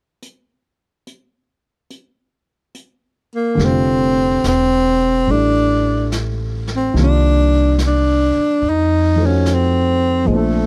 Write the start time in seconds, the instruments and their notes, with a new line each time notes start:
0.22 closed hi-hat
1.07 closed hi-hat
1.90 closed hi-hat
2.75 closed hi-hat
3.35 tenor saxophone A#3
3.55 upright bass F1, grand piano D3 G3
3.59 grand piano A3, brush sweep, snare
3.64 grand piano C4 F4, tenor saxophone C4
4.44 upright bass E1, tenor saxophone C4, snare, hi-hat pedal
5.27 upright bass A1, grand piano G3 A3 E4, tenor saxophone D4, brush sweep
6.12 snare, hi-hat pedal
6.67 snare
6.76 tenor saxophone C4
6.94 upright bass C2, grand piano D#3 G3 A#3 D4, brush sweep, snare
6.99 tenor saxophone D4, grand piano F4
7.78 snare, hi-hat pedal
7.87 tenor saxophone D4
8.37 muted upright bass stroke
8.62 upright bass F2, brush sweep
8.70 tenor saxophone D#4
9.16 grand piano F3 A3
9.20 grand piano D#4 C5
9.26 tenor saxophone C#4, grand piano F#4
9.46 snare, hi-hat pedal
9.54 tenor saxophone C4
10.25 upright bass A#1, grand piano A#2 F3, tenor saxophone G#3
10.29 grand piano C4 D4, brush sweep
10.35 tenor saxophone A3, grand piano A4